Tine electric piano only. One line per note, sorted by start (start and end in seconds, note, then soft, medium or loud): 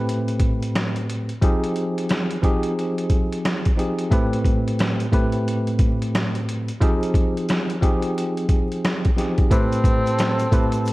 0.00 1.31 A2 medium
0.00 1.32 A3 medium
0.00 1.32 C4 medium
0.00 1.32 G4 medium
0.00 1.32 B4 loud
1.41 2.37 F3 medium
1.41 2.37 C4 medium
1.41 2.37 D#4 medium
1.41 2.38 G4 medium
1.41 2.38 G#4 loud
2.42 3.69 F3 medium
2.42 3.70 C4 medium
2.42 3.70 D#4 medium
2.42 3.70 G4 medium
2.42 3.70 G#4 loud
3.77 4.09 F3 medium
3.77 4.09 C4 medium
3.77 4.10 D#4 medium
3.77 4.10 G4 medium
3.77 4.10 G#4 medium
4.11 5.06 A2 loud
4.11 5.06 A3 medium
4.11 5.07 C4 medium
4.11 5.07 G4 medium
4.11 5.07 B4 loud
5.12 6.70 A2 medium
5.12 6.71 A3 medium
5.12 6.71 C4 medium
5.12 6.71 G4 medium
5.12 6.72 B4 loud
6.80 7.76 F3 loud
6.80 7.76 C4 medium
6.80 7.77 D#4 medium
6.80 7.77 G4 medium
6.80 7.77 G#4 loud
7.81 9.09 F3 medium
7.81 9.09 C4 medium
7.81 9.09 D#4 medium
7.81 9.09 G4 medium
7.81 9.10 G#4 loud
9.16 9.49 F3 medium
9.16 9.49 C4 medium
9.16 9.49 D#4 medium
9.16 9.49 G4 medium
9.16 9.50 G#4 medium
9.50 10.45 A2 loud
9.50 10.46 A3 medium
9.50 10.46 C4 medium
9.50 10.46 G4 medium
9.50 10.47 B4 loud
10.51 10.93 A2 medium
10.51 10.93 A3 medium
10.51 10.93 C4 medium
10.51 10.93 G4 medium
10.51 10.93 B4 loud